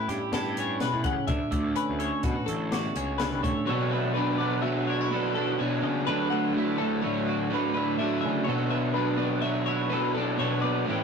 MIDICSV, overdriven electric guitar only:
0, 0, Header, 1, 2, 480
1, 0, Start_track
1, 0, Tempo, 478469
1, 1287, Time_signature, 5, 2, 24, 8
1, 11071, End_track
2, 0, Start_track
2, 0, Title_t, "Overdriven electric guitar"
2, 0, Program_c, 0, 29
2, 3674, Note_on_c, 0, 47, 92
2, 3681, Note_on_c, 0, 54, 81
2, 3686, Note_on_c, 0, 59, 88
2, 3695, Note_on_c, 0, 62, 107
2, 4153, Note_off_c, 0, 47, 0
2, 4165, Note_on_c, 0, 47, 76
2, 4171, Note_off_c, 0, 54, 0
2, 4175, Note_on_c, 0, 54, 80
2, 4176, Note_off_c, 0, 59, 0
2, 4180, Note_on_c, 0, 59, 84
2, 4181, Note_off_c, 0, 62, 0
2, 4185, Note_on_c, 0, 62, 86
2, 4398, Note_off_c, 0, 62, 0
2, 4402, Note_on_c, 0, 62, 79
2, 4410, Note_off_c, 0, 59, 0
2, 4414, Note_on_c, 0, 59, 71
2, 4418, Note_off_c, 0, 54, 0
2, 4422, Note_on_c, 0, 54, 54
2, 4621, Note_off_c, 0, 47, 0
2, 4633, Note_off_c, 0, 54, 0
2, 4633, Note_on_c, 0, 47, 82
2, 4637, Note_on_c, 0, 54, 85
2, 4645, Note_off_c, 0, 59, 0
2, 4649, Note_on_c, 0, 59, 82
2, 4651, Note_off_c, 0, 62, 0
2, 4655, Note_on_c, 0, 62, 86
2, 5114, Note_off_c, 0, 47, 0
2, 5126, Note_on_c, 0, 47, 104
2, 5130, Note_off_c, 0, 54, 0
2, 5134, Note_on_c, 0, 54, 102
2, 5136, Note_off_c, 0, 59, 0
2, 5140, Note_on_c, 0, 59, 103
2, 5142, Note_off_c, 0, 62, 0
2, 5146, Note_on_c, 0, 62, 115
2, 5360, Note_off_c, 0, 62, 0
2, 5364, Note_on_c, 0, 62, 67
2, 5366, Note_off_c, 0, 59, 0
2, 5370, Note_on_c, 0, 59, 63
2, 5379, Note_off_c, 0, 54, 0
2, 5383, Note_on_c, 0, 54, 56
2, 5593, Note_off_c, 0, 47, 0
2, 5605, Note_on_c, 0, 47, 99
2, 5610, Note_off_c, 0, 54, 0
2, 5613, Note_off_c, 0, 59, 0
2, 5614, Note_on_c, 0, 54, 102
2, 5617, Note_on_c, 0, 59, 111
2, 5618, Note_off_c, 0, 62, 0
2, 5622, Note_on_c, 0, 62, 107
2, 6072, Note_off_c, 0, 47, 0
2, 6088, Note_on_c, 0, 50, 83
2, 6096, Note_off_c, 0, 54, 0
2, 6100, Note_on_c, 0, 54, 91
2, 6102, Note_off_c, 0, 59, 0
2, 6106, Note_off_c, 0, 62, 0
2, 6106, Note_on_c, 0, 57, 100
2, 6110, Note_on_c, 0, 62, 88
2, 6550, Note_off_c, 0, 50, 0
2, 6562, Note_on_c, 0, 50, 73
2, 6566, Note_off_c, 0, 54, 0
2, 6570, Note_on_c, 0, 54, 73
2, 6572, Note_off_c, 0, 57, 0
2, 6576, Note_on_c, 0, 57, 91
2, 6577, Note_off_c, 0, 62, 0
2, 6581, Note_on_c, 0, 62, 87
2, 6791, Note_off_c, 0, 62, 0
2, 6795, Note_on_c, 0, 62, 71
2, 6809, Note_off_c, 0, 57, 0
2, 6810, Note_off_c, 0, 54, 0
2, 6813, Note_on_c, 0, 57, 71
2, 6814, Note_on_c, 0, 54, 57
2, 7032, Note_off_c, 0, 50, 0
2, 7042, Note_off_c, 0, 54, 0
2, 7044, Note_on_c, 0, 50, 87
2, 7046, Note_on_c, 0, 54, 84
2, 7055, Note_off_c, 0, 57, 0
2, 7059, Note_on_c, 0, 57, 86
2, 7060, Note_off_c, 0, 62, 0
2, 7064, Note_on_c, 0, 62, 91
2, 7516, Note_off_c, 0, 50, 0
2, 7520, Note_off_c, 0, 54, 0
2, 7528, Note_on_c, 0, 50, 103
2, 7532, Note_on_c, 0, 54, 99
2, 7536, Note_off_c, 0, 57, 0
2, 7537, Note_off_c, 0, 62, 0
2, 7540, Note_on_c, 0, 57, 109
2, 7549, Note_on_c, 0, 62, 102
2, 7757, Note_off_c, 0, 62, 0
2, 7769, Note_on_c, 0, 62, 74
2, 7776, Note_off_c, 0, 54, 0
2, 7779, Note_off_c, 0, 57, 0
2, 7783, Note_on_c, 0, 57, 72
2, 7788, Note_on_c, 0, 54, 61
2, 8001, Note_off_c, 0, 50, 0
2, 8006, Note_off_c, 0, 54, 0
2, 8013, Note_on_c, 0, 50, 97
2, 8018, Note_on_c, 0, 54, 101
2, 8022, Note_off_c, 0, 57, 0
2, 8022, Note_off_c, 0, 62, 0
2, 8026, Note_on_c, 0, 57, 110
2, 8034, Note_on_c, 0, 62, 98
2, 8475, Note_off_c, 0, 50, 0
2, 8478, Note_off_c, 0, 54, 0
2, 8486, Note_off_c, 0, 62, 0
2, 8491, Note_on_c, 0, 47, 88
2, 8501, Note_on_c, 0, 54, 98
2, 8505, Note_off_c, 0, 57, 0
2, 8509, Note_on_c, 0, 59, 88
2, 8516, Note_on_c, 0, 62, 101
2, 8961, Note_off_c, 0, 47, 0
2, 8964, Note_off_c, 0, 54, 0
2, 8974, Note_on_c, 0, 47, 76
2, 8977, Note_off_c, 0, 62, 0
2, 8977, Note_on_c, 0, 54, 73
2, 8984, Note_off_c, 0, 59, 0
2, 8988, Note_on_c, 0, 59, 71
2, 8989, Note_on_c, 0, 62, 80
2, 9193, Note_off_c, 0, 62, 0
2, 9205, Note_on_c, 0, 62, 73
2, 9217, Note_off_c, 0, 59, 0
2, 9219, Note_off_c, 0, 54, 0
2, 9221, Note_on_c, 0, 59, 64
2, 9231, Note_on_c, 0, 54, 58
2, 9441, Note_off_c, 0, 47, 0
2, 9447, Note_off_c, 0, 54, 0
2, 9453, Note_on_c, 0, 47, 86
2, 9458, Note_off_c, 0, 62, 0
2, 9459, Note_on_c, 0, 54, 86
2, 9465, Note_off_c, 0, 59, 0
2, 9469, Note_on_c, 0, 59, 91
2, 9470, Note_on_c, 0, 62, 80
2, 9915, Note_off_c, 0, 47, 0
2, 9922, Note_off_c, 0, 54, 0
2, 9927, Note_on_c, 0, 47, 94
2, 9934, Note_on_c, 0, 54, 111
2, 9937, Note_off_c, 0, 59, 0
2, 9939, Note_off_c, 0, 62, 0
2, 9941, Note_on_c, 0, 59, 110
2, 9951, Note_on_c, 0, 62, 105
2, 10164, Note_off_c, 0, 62, 0
2, 10176, Note_on_c, 0, 62, 73
2, 10179, Note_off_c, 0, 59, 0
2, 10183, Note_on_c, 0, 59, 74
2, 10185, Note_off_c, 0, 54, 0
2, 10197, Note_on_c, 0, 54, 62
2, 10399, Note_off_c, 0, 47, 0
2, 10411, Note_off_c, 0, 54, 0
2, 10412, Note_on_c, 0, 47, 95
2, 10423, Note_on_c, 0, 54, 100
2, 10426, Note_off_c, 0, 62, 0
2, 10427, Note_off_c, 0, 59, 0
2, 10431, Note_on_c, 0, 59, 107
2, 10438, Note_on_c, 0, 62, 107
2, 10874, Note_off_c, 0, 47, 0
2, 10880, Note_off_c, 0, 54, 0
2, 10888, Note_off_c, 0, 62, 0
2, 10895, Note_on_c, 0, 45, 92
2, 10898, Note_on_c, 0, 52, 84
2, 10908, Note_on_c, 0, 55, 87
2, 10911, Note_off_c, 0, 59, 0
2, 10915, Note_on_c, 0, 61, 96
2, 10915, Note_on_c, 0, 64, 89
2, 11071, Note_off_c, 0, 45, 0
2, 11071, Note_off_c, 0, 52, 0
2, 11071, Note_off_c, 0, 55, 0
2, 11071, Note_off_c, 0, 61, 0
2, 11071, Note_off_c, 0, 64, 0
2, 11071, End_track
0, 0, End_of_file